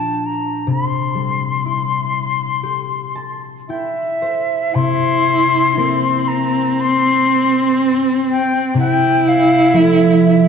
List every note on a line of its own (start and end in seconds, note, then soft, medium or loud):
0.00 0.73 A#2 soft
0.00 0.73 F3 soft
0.00 2.51 D4 soft
0.00 1.30 F4 soft
0.00 0.27 A5 medium
0.26 0.70 A#5 medium
0.67 4.57 C3 medium
0.71 3.46 C6 medium
1.15 4.79 G3 soft
1.65 3.69 E4 soft
2.63 4.99 G4 soft
3.15 4.60 A5 soft
3.69 5.77 E4 soft
3.69 4.76 E5 medium
3.69 5.25 G5 soft
4.22 6.20 C5 soft
4.74 8.65 C3 medium
4.74 5.79 E4 medium
4.74 6.29 C6 medium
5.77 8.99 A#3 soft
5.77 8.79 C4 medium
5.77 8.78 C4 soft
5.77 8.72 E4 soft
6.27 6.81 A#5 medium
6.80 8.02 C6 medium
8.30 8.73 G5 medium
8.74 10.48 C3 medium
8.74 10.48 E4 medium
8.79 9.29 G5 medium
9.28 9.78 F5 medium
9.73 10.48 F3 soft
9.73 10.48 A3 soft
9.73 10.48 E4 soft
9.73 10.48 E5 medium